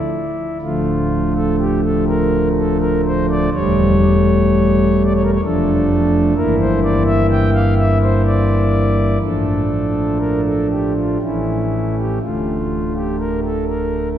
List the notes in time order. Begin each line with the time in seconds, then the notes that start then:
Already playing: E4
0.61 D1 D2 D3 F3 A3 F4
1.35 A4
1.59 G4
1.84 A4
2.07 A#4
2.57 A4
2.81 A#4
3.06 C5
3.30 D5
3.53 E1 E2 G3 A3 C#5
5.05 D5
5.15 C#5
5.23 A#4
5.33 C#5
5.42 F1 F2 F3 A3 D4 A4
6.36 G1 G2 E3 A#3 E4 A#4
6.60 C5
6.84 D5
7.07 E5
7.31 G5
7.54 F5
7.78 E5
8.02 C5
8.26 D5
9.21 A1 A2 F3 A3 D4 A4
10.20 A#4
10.45 A4
10.71 G4
10.97 F4
11.22 A1 A2 E3 A3 C#4 E4
11.97 G4
12.21 D1 D2 D3 A3 F4
12.95 G4
13.19 A#4
13.44 A4
13.68 A#4